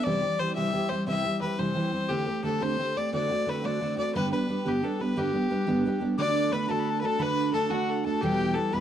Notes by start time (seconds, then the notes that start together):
0.04 C3 E3 G3 C4 G4 D5
0.23 G3 C4 G4
0.39 E3 G3 C4 G4 C5
0.55 C3 E3 G3 C4 G4 E5
0.73 E3 G3 C4 G4
0.89 G3 C4 G4 C5
1.07 C3 E3 G3 C4 G4 E5
1.24 G3 C4 G4
1.41 E3 G3 C4 G4 B4
1.59 C3 E3 G3 C4 G4 C5
1.75 E3 G3 C4 G4
1.92 G3 C4 G4
2.09 D3 A3 C4 G4
2.27 A3 C4 G4
2.43 D3 A3 C4 G4 A4
2.61 D3 A3 C4 G4 C5
2.78 D3 A3 C4 G4
2.96 A3 C4 G4 D5
3.12 D3 A3 C4 F#4 D5
3.30 A3 C4 F#4
3.46 D3 A3 C4 F#4 B4
3.63 D3 A3 C4 F#4 D5
3.80 D3 A3 C4 F#4
3.97 A3 C4 F#4 D5
4.15 G2 D3 G3 B3 D4 G4 B4
4.32 G3 B3 D4 G4 B4
4.48 G3 B3 D4 G4
4.65 G2 D3 G3 B3 D4 G4
4.82 G3 B3 D4 G4 A4
5.00 G3 B3 D4 G4 B4
5.16 G2 D3 G3 B3 D4 G4
5.33 G3 B3 D4 G4
5.50 G3 B3 D4 G4
5.67 G2 D3 G3 B3 D4 G4
5.85 G3 B3 D4 G4
6.00 G3 B3 D4 G4
6.18 D3 A3 D4 F#4 D5 D6
6.51 D3 A3 D4 F#4 B4 B5
6.68 D3 A3 D4 F#4 A4 A5
6.79 B5
6.90 A5
7.01 A3 D4 F#4 B4 A5
7.05 A4
7.19 D3 A3 D4 F#4 B4 B5
7.53 D3 A3 D4 F#4 A4 A5
7.70 D3 A3 D4 F#4 F#5
7.89 A4
8.04 A3 D4 F#4 A4 A5
8.21 E2 B2 E3 G3 B3 G4 G5
8.54 E3 G3 B3 G4 A4 A5
8.72 E2 B2 E3 G3 B3 G4 B4 B5